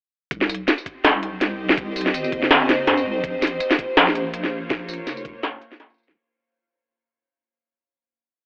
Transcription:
0.31 C2 C4, kick, closed hi-hat
0.40 C5, snare
0.47 G4, closed hi-hat, tambourine
0.55 closed hi-hat
0.68 snare, closed hi-hat, tambourine
0.78 tambourine
0.82 D#5
0.86 kick, closed hi-hat
1.04 C2, snare, closed hi-hat
1.23 closed hi-hat
1.41 snare, closed hi-hat
1.69 snare
1.77 kick, closed hi-hat
1.96 closed hi-hat, tambourine
2.01 closed hi-hat
2.06 snare
2.14 G1, closed hi-hat, tambourine
2.24 tambourine
2.32 kick, closed hi-hat
2.42 snare
2.51 snare, closed hi-hat
2.69 snare, closed hi-hat
2.87 G2, snare, closed hi-hat
2.97 tambourine
3.06 C2
3.24 A#1 A#3, kick, closed hi-hat
3.38 F4
3.42 snare, closed hi-hat, tambourine
3.47 C#5, closed hi-hat
3.60 closed hi-hat, tambourine
3.71 snare, tambourine
3.79 kick, closed hi-hat
3.97 A#1, snare, closed hi-hat
4.07 snare
4.15 closed hi-hat
4.34 closed hi-hat
4.44 snare
4.70 kick, snare, closed hi-hat
4.89 closed hi-hat, tambourine
4.94 closed hi-hat
5.07 F1, snare, closed hi-hat, tambourine
5.17 tambourine
5.25 kick, closed hi-hat
5.43 snare, closed hi-hat
5.62 closed hi-hat
5.72 snare
5.80 snare, closed hi-hat
5.90 tambourine
5.94 tambourine
5.98 tambourine
6.03 tambourine
6.08 C2, snare

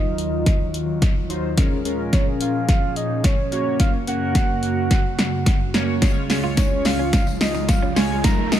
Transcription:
Already playing: D#2 D#3 F#3 D#4 F4 A#4 D#5
0.18 closed hi-hat
0.46 kick, snare, closed hi-hat
0.74 closed hi-hat
1.02 kick, snare, closed hi-hat
1.30 F#3 D#4 F4 C5, closed hi-hat
1.57 A#2 F3 G#3 C#4 F4 G#4 A#4, kick, snare, closed hi-hat
1.85 G#3 C#4 F4 A#4, closed hi-hat
2.13 C#5, kick, snare, closed hi-hat
2.41 F5, closed hi-hat
2.69 F5, kick, snare, closed hi-hat
2.96 D#5, closed hi-hat
3.24 C#5, kick, snare, closed hi-hat
3.52 F#2 C#3 A#3 C#4 F#4 C#5, closed hi-hat
3.80 F5, kick, snare, closed hi-hat
4.07 A#3 C#4 F#4 A#4 F#5, closed hi-hat
4.35 kick, snare, closed hi-hat
4.63 closed hi-hat
4.91 kick, snare, closed hi-hat
5.19 snare, closed hi-hat
5.46 kick, snare, closed hi-hat
5.74 A#3 C#4 F#4 C#5, snare, closed hi-hat
6.02 C#2 G#3 C#4 F4 C#5, kick, snare, closed hi-hat, tambourine, riser
6.30 G#3 C#4 F4 C#5, muted clean electric guitar stroke, snare, open hi-hat, tambourine
6.44 F4
6.57 D#4 C#5, kick, snare, closed hi-hat, tambourine
6.85 F5, muted clean electric guitar stroke, snare, open hi-hat, tambourine
6.99 C#4
7.13 C#4 F5, kick, snare, closed hi-hat, tambourine
7.27 muted clean electric guitar stroke, tambourine
7.41 D#5, snare, open hi-hat, tambourine
7.55 D#4, tambourine
7.69 F5, muted clean electric guitar stroke, kick, snare, closed hi-hat, tambourine
7.82 C#4
7.96 G#3 C#4 F4 C#5 G#5, snare, open hi-hat, tambourine
8.24 D#2 D#3 F#3 D#4 F4 A#4 A#5, kick, snare, closed hi-hat, tambourine
8.52 F#3 D#4 F4 A#4 D#5, muted clean electric guitar stroke, snare, open hi-hat, tambourine

